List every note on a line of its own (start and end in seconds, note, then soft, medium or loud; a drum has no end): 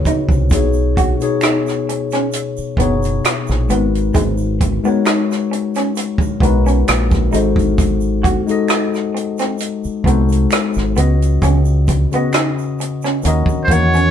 0.00 0.31 C#3 medium
0.00 0.32 B3 medium
0.00 0.32 D#4 medium
0.00 0.33 F#4 medium
0.00 0.53 B4 medium
0.00 0.37 C#5 medium
0.05 0.21 D#4 medium
0.05 kick medium
0.05 closed hi-hat medium
0.05 shaker soft
0.29 0.52 C2 medium
0.29 kick medium
0.29 shaker soft
0.50 1.14 B1 medium
0.50 1.09 B2 medium
0.50 1.10 B3 medium
0.50 1.10 D#4 medium
0.50 1.11 G#4 medium
0.50 kick loud
0.50 closed hi-hat medium
0.50 shaker medium
0.54 1.11 C#5 medium
0.73 shaker soft
0.97 1.12 F#4 medium
0.97 kick loud
0.97 closed hi-hat medium
1.19 2.55 B2 medium
1.19 2.55 B3 medium
1.19 2.56 D#4 medium
1.19 2.56 G#4 medium
1.19 closed hi-hat soft
1.19 shaker soft
1.24 2.57 C#5 medium
1.41 1.58 D#4 medium
1.41 finger snap medium
1.41 cross-stick medium
1.41 closed hi-hat medium
1.41 shaker medium
1.67 cross-stick soft
1.67 shaker soft
1.89 muted clean electric guitar stroke soft
1.89 closed hi-hat medium
2.11 2.25 C#4 medium
2.11 cross-stick soft
2.11 closed hi-hat soft
2.11 shaker soft
2.32 closed hi-hat medium
2.32 shaker soft
2.57 muted fingered electric bass stroke soft
2.57 shaker soft
2.77 3.18 F#1 medium
2.77 3.68 B2 medium
2.77 3.69 B3 medium
2.77 2.93 B3 medium
2.77 3.68 D#4 medium
2.77 3.70 G#4 medium
2.77 kick medium
2.77 closed hi-hat medium
2.81 3.71 C#5 medium
3.03 closed hi-hat soft
3.03 shaker soft
3.25 finger snap medium
3.25 cross-stick loud
3.25 closed hi-hat medium
3.25 shaker medium
3.47 3.67 A#1 medium
3.47 cross-stick soft
3.47 shaker soft
3.68 4.10 G#1 medium
3.68 4.65 G#3 medium
3.68 3.84 B3 medium
3.68 4.66 D#4 medium
3.68 4.66 F#4 medium
3.68 4.67 A#4 medium
3.68 closed hi-hat medium
3.68 shaker soft
3.72 4.67 B4 medium
3.95 closed hi-hat soft
3.95 shaker soft
4.14 4.78 G#1 loud
4.14 4.29 G#3 medium
4.14 kick loud
4.14 closed hi-hat medium
4.14 shaker medium
4.38 shaker medium
4.61 muted clean electric guitar stroke soft
4.61 kick medium
4.61 closed hi-hat medium
4.83 6.19 G#3 medium
4.83 4.98 B3 medium
4.83 6.19 D#4 medium
4.83 6.20 F#4 medium
4.83 6.20 A#4 medium
4.83 shaker soft
4.87 6.21 C#5 medium
5.06 5.21 D#4 medium
5.06 finger snap medium
5.06 cross-stick loud
5.06 closed hi-hat medium
5.06 shaker medium
5.31 cross-stick soft
5.31 shaker soft
5.51 muted clean electric guitar stroke soft
5.51 closed hi-hat medium
5.75 5.89 C#4 medium
5.75 cross-stick soft
5.75 closed hi-hat soft
5.75 shaker soft
5.96 muted clean electric guitar stroke soft
5.96 closed hi-hat medium
5.96 shaker medium
6.18 muted fingered electric bass stroke soft
6.18 kick medium
6.18 shaker soft
6.40 6.82 B1 medium
6.40 7.30 G#3 medium
6.40 6.57 B3 medium
6.40 7.31 D#4 medium
6.40 7.32 F#4 medium
6.40 7.34 A#4 medium
6.40 kick medium
6.40 closed hi-hat medium
6.45 7.34 B4 medium
6.66 6.79 C#4 medium
6.66 closed hi-hat soft
6.66 shaker soft
6.88 7.29 A#1 loud
6.88 finger snap medium
6.88 cross-stick loud
6.88 closed hi-hat medium
6.88 shaker medium
7.11 kick medium
7.11 cross-stick soft
7.11 shaker soft
7.31 8.36 G#1 medium
7.31 8.29 G#3 medium
7.31 8.29 D#4 medium
7.31 7.47 D#4 medium
7.31 8.30 F#4 medium
7.31 8.30 A4 medium
7.31 closed hi-hat medium
7.31 shaker soft
7.36 8.31 C5 medium
7.56 kick medium
7.56 closed hi-hat soft
7.56 shaker soft
7.78 kick loud
7.78 closed hi-hat medium
7.78 shaker medium
8.01 shaker soft
8.23 8.38 F#4 medium
8.23 kick medium
8.23 closed hi-hat medium
8.47 9.82 G#3 medium
8.47 9.83 D#4 medium
8.47 9.83 F#4 medium
8.47 9.84 A4 medium
8.47 closed hi-hat soft
8.47 shaker soft
8.51 9.84 D#5 loud
8.68 8.84 D#4 medium
8.68 finger snap medium
8.68 cross-stick loud
8.68 closed hi-hat medium
8.68 shaker medium
8.94 cross-stick soft
8.94 shaker soft
9.15 muted clean electric guitar stroke soft
9.15 closed hi-hat soft
9.38 9.52 C4 medium
9.38 cross-stick soft
9.38 closed hi-hat soft
9.38 shaker soft
9.58 closed hi-hat medium
9.58 shaker medium
9.84 muted fingered electric bass stroke soft
9.84 shaker medium
10.04 10.46 C2 medium
10.04 10.96 G#3 medium
10.04 10.21 B3 medium
10.04 10.96 D#4 medium
10.04 10.96 F#4 medium
10.04 10.97 A4 medium
10.04 kick medium
10.04 closed hi-hat medium
10.09 10.98 C5 medium
10.29 closed hi-hat soft
10.29 shaker soft
10.51 finger snap medium
10.51 cross-stick loud
10.51 closed hi-hat medium
10.51 shaker medium
10.74 10.95 G#1 medium
10.74 shaker soft
10.78 cross-stick soft
10.95 11.37 C#2 medium
10.95 11.92 C#3 medium
10.95 11.11 B3 medium
10.95 11.93 C#4 medium
10.95 11.93 F#4 medium
10.95 11.94 B4 medium
10.95 closed hi-hat medium
10.95 shaker soft
10.99 11.95 D#5 medium
11.22 closed hi-hat soft
11.22 shaker soft
11.42 12.05 C#2 medium
11.42 11.57 C#4 medium
11.42 kick loud
11.42 closed hi-hat medium
11.42 shaker medium
11.65 shaker soft
11.87 muted clean electric guitar stroke soft
11.87 kick medium
11.87 closed hi-hat medium
11.87 shaker soft
12.11 13.23 C#3 medium
12.11 12.26 B3 medium
12.11 13.23 C#4 medium
12.11 13.24 F#4 medium
12.11 13.25 B4 medium
12.11 closed hi-hat soft
12.11 shaker soft
12.15 13.25 D#5 medium
12.33 12.49 D#4 medium
12.33 finger snap medium
12.33 cross-stick loud
12.33 closed hi-hat medium
12.33 shaker medium
12.58 shaker soft
12.79 muted clean electric guitar stroke soft
12.79 closed hi-hat soft
12.79 shaker soft
13.02 13.16 C#4 medium
13.02 cross-stick soft
13.02 shaker soft
13.22 13.46 D#2 medium
13.22 13.63 D#3 medium
13.22 13.63 C#4 medium
13.22 13.63 F#4 medium
13.22 13.64 A#4 medium
13.22 muted clean electric guitar stroke soft
13.22 closed hi-hat medium
13.22 shaker medium
13.28 13.65 D#5 medium
13.46 muted fingered electric bass stroke soft
13.46 kick medium
13.46 shaker soft
13.64 13.74 C5 medium
13.64 kick medium
13.64 shaker soft
13.68 14.11 E2 medium
13.68 14.11 D#3 medium
13.68 13.84 A#3 medium
13.68 14.11 C#4 medium
13.68 14.11 F#4 medium
13.68 14.11 A#4 medium
13.68 closed hi-hat medium
13.72 14.11 C#5 medium
13.72 14.11 F#5 medium
13.94 14.07 C#4 medium
13.94 closed hi-hat soft
13.94 shaker soft